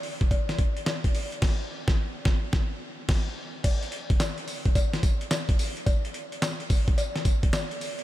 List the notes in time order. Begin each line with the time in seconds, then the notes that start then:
0.03 open hi-hat
0.21 kick, closed hi-hat
0.31 kick, closed hi-hat, cowbell
0.49 snare, closed hi-hat
0.59 kick, closed hi-hat
0.77 closed hi-hat
0.86 snare, clap, closed hi-hat, cowbell
1.04 kick, closed hi-hat
1.15 open hi-hat
1.32 closed hi-hat
1.42 kick, snare, crash
1.88 kick, snare
2.25 kick, snare
2.53 kick, snare
3.09 kick, snare, crash
3.64 kick, closed hi-hat, crash, tambourine, cowbell
3.82 closed hi-hat
3.92 closed hi-hat
4.10 kick, closed hi-hat
4.20 snare, clap, closed hi-hat, tambourine, cowbell
4.38 closed hi-hat
4.48 open hi-hat, tambourine
4.65 kick, closed hi-hat
4.75 kick, closed hi-hat, tambourine, cowbell
4.93 snare, closed hi-hat
5.03 kick, closed hi-hat, tambourine
5.21 closed hi-hat
5.31 snare, clap, closed hi-hat, tambourine, cowbell
5.49 kick, closed hi-hat
5.59 open hi-hat, tambourine
5.77 closed hi-hat
5.86 kick, closed hi-hat, tambourine, cowbell
6.05 closed hi-hat
6.14 closed hi-hat
6.32 closed hi-hat
6.42 snare, clap, closed hi-hat, tambourine, cowbell
6.60 closed hi-hat
6.70 kick, open hi-hat, tambourine
6.88 kick, closed hi-hat
6.98 closed hi-hat, tambourine, cowbell
7.16 snare, closed hi-hat
7.25 kick, closed hi-hat, tambourine
7.43 kick, closed hi-hat
7.53 snare, clap, closed hi-hat, tambourine, cowbell
7.71 closed hi-hat
7.81 open hi-hat, tambourine
7.99 closed hi-hat